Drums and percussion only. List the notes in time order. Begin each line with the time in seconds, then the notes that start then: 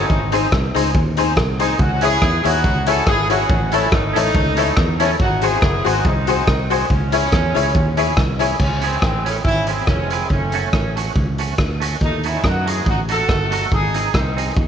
0.10 kick
0.32 closed hi-hat
0.52 kick, cross-stick
0.76 closed hi-hat
0.95 kick
1.17 closed hi-hat
1.37 kick, cross-stick
1.60 closed hi-hat
1.79 kick
2.01 closed hi-hat
2.22 kick, cross-stick
2.45 closed hi-hat
2.64 kick
2.86 closed hi-hat
3.07 kick, cross-stick
3.30 closed hi-hat
3.50 kick
3.72 closed hi-hat
3.92 kick, cross-stick
4.16 closed hi-hat
4.35 kick
4.57 closed hi-hat
4.77 kick, cross-stick
5.00 closed hi-hat
5.20 kick
5.42 closed hi-hat
5.62 kick, cross-stick
5.86 closed hi-hat
6.05 kick
6.27 closed hi-hat
6.47 kick, cross-stick
6.71 closed hi-hat
6.90 kick
7.12 closed hi-hat
7.32 kick, cross-stick
7.56 closed hi-hat
7.75 kick
7.97 closed hi-hat
8.17 kick, cross-stick
8.40 closed hi-hat
8.60 kick, crash
8.81 closed hi-hat
9.02 kick, cross-stick
9.26 closed hi-hat
9.45 kick
9.67 closed hi-hat
9.87 kick, cross-stick
10.10 closed hi-hat
10.30 kick
10.52 closed hi-hat
10.73 kick, cross-stick
10.97 closed hi-hat
11.16 kick
11.38 closed hi-hat
11.58 kick, cross-stick
11.81 closed hi-hat
12.01 kick
12.23 closed hi-hat
12.44 kick, cross-stick
12.67 closed hi-hat
12.86 kick
13.09 closed hi-hat
13.29 kick, cross-stick
13.52 closed hi-hat
13.72 kick
13.94 closed hi-hat
14.14 kick, cross-stick
14.38 closed hi-hat
14.57 kick